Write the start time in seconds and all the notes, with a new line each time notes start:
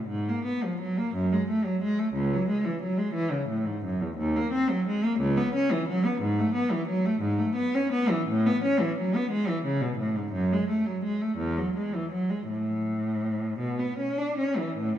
0.08 G#2
0.29 A#3
0.45 B3
0.64 F3
0.81 F#3
0.98 A#3
1.15 F#2
1.33 G#3
1.49 A3
1.65 F#3
1.83 G#3
1.99 A3
2.14 C#2
2.34 F#3
2.49 G#3
2.65 E3
2.82 F#3
2.98 G#3
3.14 E3
3.31 C#3
3.49 A2
3.66 G#2
3.84 F#2
4.01 E2
4.18 D#2
4.37 A#3
4.52 C4
4.70 F#3
4.88 G#3
5.05 A#3
5.20 C#2
5.37 B3
5.55 C#4
5.71 E3
5.89 F#3
6.05 B3
6.21 G#2
6.39 A3
6.55 B3
6.71 E3
6.88 F#3
7.06 A3
7.21 G#2
7.39 A3
7.56 B3
7.75 C#4
7.92 B3
8.10 E3
8.28 A2
8.46 B3
8.64 C#4
8.80 E3
8.99 F#3
9.15 B3
9.31 G#3
9.48 E3
9.65 C#3
9.82 B2
9.98 A2
10.16 G#2
10.32 F#2
10.53 G#3
10.69 A3
10.86 F#3
11.04 G#3
11.22 A3
11.38 E2
11.57 F#3
11.76 G#3
11.95 E3
12.12 F#3
12.30 G#3
12.49 A2
13.59 B2
13.79 B3
13.99 C#4
14.18 D4
14.38 C#4
14.57 E3
14.78 A2